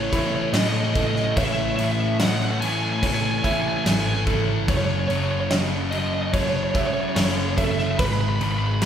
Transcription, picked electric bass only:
0, 0, Header, 1, 2, 480
1, 0, Start_track
1, 0, Tempo, 827586
1, 796, Time_signature, 4, 2, 24, 8
1, 5135, End_track
2, 0, Start_track
2, 0, Title_t, "Picked electric bass"
2, 0, Program_c, 0, 34
2, 308, Note_on_c, 0, 45, 84
2, 769, Note_off_c, 0, 45, 0
2, 792, Note_on_c, 0, 33, 103
2, 1014, Note_off_c, 0, 33, 0
2, 1027, Note_on_c, 0, 33, 101
2, 1969, Note_off_c, 0, 33, 0
2, 2237, Note_on_c, 0, 32, 90
2, 2694, Note_off_c, 0, 32, 0
2, 2716, Note_on_c, 0, 30, 103
2, 2936, Note_off_c, 0, 30, 0
2, 2955, Note_on_c, 0, 30, 97
2, 3893, Note_off_c, 0, 30, 0
2, 4154, Note_on_c, 0, 30, 97
2, 4613, Note_off_c, 0, 30, 0
2, 4634, Note_on_c, 0, 32, 103
2, 4856, Note_off_c, 0, 32, 0
2, 4875, Note_on_c, 0, 32, 97
2, 5135, Note_off_c, 0, 32, 0
2, 5135, End_track
0, 0, End_of_file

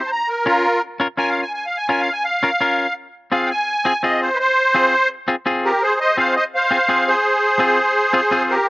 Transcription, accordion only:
0, 0, Header, 1, 2, 480
1, 0, Start_track
1, 0, Key_signature, -4, "minor"
1, 0, Tempo, 356718
1, 152, Time_signature, 4, 2, 24, 8
1, 11693, End_track
2, 0, Start_track
2, 0, Title_t, "Accordion"
2, 0, Program_c, 0, 21
2, 0, Note_on_c, 0, 72, 85
2, 93, Note_on_c, 0, 81, 68
2, 128, Note_off_c, 0, 81, 0
2, 146, Note_off_c, 0, 72, 0
2, 157, Note_on_c, 0, 82, 97
2, 385, Note_on_c, 0, 70, 90
2, 388, Note_off_c, 0, 82, 0
2, 614, Note_off_c, 0, 70, 0
2, 626, Note_on_c, 0, 65, 90
2, 635, Note_on_c, 0, 70, 105
2, 1075, Note_off_c, 0, 65, 0
2, 1099, Note_off_c, 0, 70, 0
2, 1592, Note_on_c, 0, 80, 104
2, 1737, Note_on_c, 0, 77, 92
2, 1747, Note_off_c, 0, 80, 0
2, 1900, Note_off_c, 0, 77, 0
2, 1906, Note_on_c, 0, 80, 76
2, 2049, Note_off_c, 0, 80, 0
2, 2069, Note_on_c, 0, 80, 82
2, 2225, Note_off_c, 0, 80, 0
2, 2231, Note_on_c, 0, 77, 81
2, 2385, Note_on_c, 0, 80, 96
2, 2387, Note_off_c, 0, 77, 0
2, 2533, Note_off_c, 0, 80, 0
2, 2554, Note_on_c, 0, 80, 86
2, 2700, Note_on_c, 0, 77, 104
2, 2708, Note_off_c, 0, 80, 0
2, 2861, Note_off_c, 0, 77, 0
2, 2865, Note_on_c, 0, 80, 94
2, 3020, Note_on_c, 0, 77, 96
2, 3024, Note_off_c, 0, 80, 0
2, 3956, Note_off_c, 0, 77, 0
2, 4476, Note_on_c, 0, 77, 97
2, 4660, Note_on_c, 0, 79, 71
2, 4693, Note_off_c, 0, 79, 0
2, 4706, Note_off_c, 0, 77, 0
2, 4719, Note_on_c, 0, 80, 108
2, 5413, Note_off_c, 0, 80, 0
2, 5430, Note_on_c, 0, 75, 89
2, 5663, Note_off_c, 0, 75, 0
2, 5673, Note_on_c, 0, 72, 93
2, 5854, Note_on_c, 0, 71, 77
2, 5889, Note_off_c, 0, 71, 0
2, 5897, Note_off_c, 0, 72, 0
2, 5917, Note_on_c, 0, 72, 122
2, 6845, Note_off_c, 0, 72, 0
2, 7601, Note_on_c, 0, 67, 76
2, 7601, Note_on_c, 0, 70, 86
2, 7819, Note_off_c, 0, 67, 0
2, 7839, Note_on_c, 0, 68, 81
2, 7841, Note_on_c, 0, 72, 100
2, 7843, Note_off_c, 0, 70, 0
2, 8058, Note_off_c, 0, 68, 0
2, 8063, Note_off_c, 0, 72, 0
2, 8080, Note_on_c, 0, 75, 99
2, 8083, Note_on_c, 0, 72, 73
2, 8299, Note_off_c, 0, 75, 0
2, 8300, Note_off_c, 0, 72, 0
2, 8323, Note_on_c, 0, 77, 95
2, 8327, Note_on_c, 0, 72, 72
2, 8540, Note_off_c, 0, 77, 0
2, 8542, Note_off_c, 0, 72, 0
2, 8563, Note_on_c, 0, 75, 103
2, 8567, Note_on_c, 0, 72, 75
2, 8668, Note_off_c, 0, 75, 0
2, 8671, Note_off_c, 0, 72, 0
2, 8814, Note_on_c, 0, 77, 99
2, 8818, Note_on_c, 0, 72, 76
2, 9475, Note_off_c, 0, 72, 0
2, 9523, Note_on_c, 0, 72, 101
2, 9528, Note_on_c, 0, 68, 79
2, 9543, Note_off_c, 0, 77, 0
2, 11385, Note_off_c, 0, 68, 0
2, 11442, Note_on_c, 0, 70, 92
2, 11445, Note_on_c, 0, 67, 71
2, 11494, Note_off_c, 0, 72, 0
2, 11660, Note_off_c, 0, 70, 0
2, 11661, Note_off_c, 0, 67, 0
2, 11693, End_track
0, 0, End_of_file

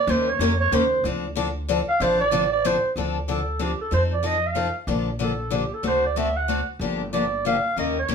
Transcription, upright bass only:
0, 0, Header, 1, 2, 480
1, 0, Start_track
1, 0, Key_signature, -1, "minor"
1, 0, Tempo, 320000
1, 122, Time_signature, 3, 2, 24, 8
1, 12223, End_track
2, 0, Start_track
2, 0, Title_t, "Upright bass"
2, 0, Program_c, 0, 32
2, 110, Note_on_c, 0, 39, 94
2, 498, Note_off_c, 0, 39, 0
2, 589, Note_on_c, 0, 41, 87
2, 1002, Note_off_c, 0, 41, 0
2, 1077, Note_on_c, 0, 39, 86
2, 1486, Note_off_c, 0, 39, 0
2, 1555, Note_on_c, 0, 38, 84
2, 2707, Note_off_c, 0, 38, 0
2, 3000, Note_on_c, 0, 33, 85
2, 4149, Note_off_c, 0, 33, 0
2, 4435, Note_on_c, 0, 38, 76
2, 5587, Note_off_c, 0, 38, 0
2, 5875, Note_on_c, 0, 41, 83
2, 7028, Note_off_c, 0, 41, 0
2, 7306, Note_on_c, 0, 34, 83
2, 8463, Note_off_c, 0, 34, 0
2, 8749, Note_on_c, 0, 38, 82
2, 9906, Note_off_c, 0, 38, 0
2, 10192, Note_on_c, 0, 31, 79
2, 11348, Note_off_c, 0, 31, 0
2, 11646, Note_on_c, 0, 39, 80
2, 12028, Note_off_c, 0, 39, 0
2, 12131, Note_on_c, 0, 36, 72
2, 12223, Note_off_c, 0, 36, 0
2, 12223, End_track
0, 0, End_of_file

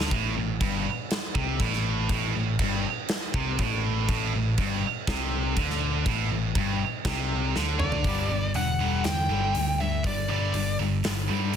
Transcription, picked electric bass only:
0, 0, Header, 1, 2, 480
1, 0, Start_track
1, 0, Tempo, 496278
1, 115, Time_signature, 4, 2, 24, 8
1, 11185, End_track
2, 0, Start_track
2, 0, Title_t, "Picked electric bass"
2, 0, Program_c, 0, 34
2, 109, Note_on_c, 0, 33, 96
2, 335, Note_off_c, 0, 33, 0
2, 361, Note_on_c, 0, 33, 72
2, 581, Note_off_c, 0, 33, 0
2, 589, Note_on_c, 0, 31, 96
2, 815, Note_off_c, 0, 31, 0
2, 1309, Note_on_c, 0, 36, 85
2, 1534, Note_off_c, 0, 36, 0
2, 1548, Note_on_c, 0, 33, 90
2, 1996, Note_off_c, 0, 33, 0
2, 2029, Note_on_c, 0, 33, 87
2, 2254, Note_off_c, 0, 33, 0
2, 2283, Note_on_c, 0, 33, 74
2, 2501, Note_off_c, 0, 33, 0
2, 2510, Note_on_c, 0, 31, 96
2, 2734, Note_off_c, 0, 31, 0
2, 3232, Note_on_c, 0, 36, 89
2, 3455, Note_off_c, 0, 36, 0
2, 3477, Note_on_c, 0, 33, 100
2, 3920, Note_off_c, 0, 33, 0
2, 3957, Note_on_c, 0, 33, 100
2, 4177, Note_off_c, 0, 33, 0
2, 4203, Note_on_c, 0, 33, 79
2, 4420, Note_off_c, 0, 33, 0
2, 4436, Note_on_c, 0, 31, 108
2, 4657, Note_off_c, 0, 31, 0
2, 4910, Note_on_c, 0, 36, 99
2, 5356, Note_off_c, 0, 36, 0
2, 5390, Note_on_c, 0, 38, 97
2, 5836, Note_off_c, 0, 38, 0
2, 5863, Note_on_c, 0, 33, 105
2, 6089, Note_off_c, 0, 33, 0
2, 6114, Note_on_c, 0, 33, 81
2, 6335, Note_off_c, 0, 33, 0
2, 6341, Note_on_c, 0, 31, 92
2, 6568, Note_off_c, 0, 31, 0
2, 6820, Note_on_c, 0, 36, 91
2, 7271, Note_off_c, 0, 36, 0
2, 7313, Note_on_c, 0, 38, 89
2, 7759, Note_off_c, 0, 38, 0
2, 7784, Note_on_c, 0, 31, 94
2, 8002, Note_off_c, 0, 31, 0
2, 8039, Note_on_c, 0, 31, 82
2, 8251, Note_off_c, 0, 31, 0
2, 8269, Note_on_c, 0, 28, 88
2, 8701, Note_off_c, 0, 28, 0
2, 8752, Note_on_c, 0, 40, 85
2, 8968, Note_off_c, 0, 40, 0
2, 8992, Note_on_c, 0, 31, 80
2, 9208, Note_off_c, 0, 31, 0
2, 9243, Note_on_c, 0, 38, 79
2, 9670, Note_off_c, 0, 38, 0
2, 9716, Note_on_c, 0, 31, 88
2, 9931, Note_off_c, 0, 31, 0
2, 9962, Note_on_c, 0, 31, 80
2, 10175, Note_off_c, 0, 31, 0
2, 10195, Note_on_c, 0, 31, 92
2, 10412, Note_off_c, 0, 31, 0
2, 10438, Note_on_c, 0, 31, 78
2, 10653, Note_off_c, 0, 31, 0
2, 10679, Note_on_c, 0, 31, 85
2, 10894, Note_off_c, 0, 31, 0
2, 10918, Note_on_c, 0, 43, 80
2, 11134, Note_off_c, 0, 43, 0
2, 11185, End_track
0, 0, End_of_file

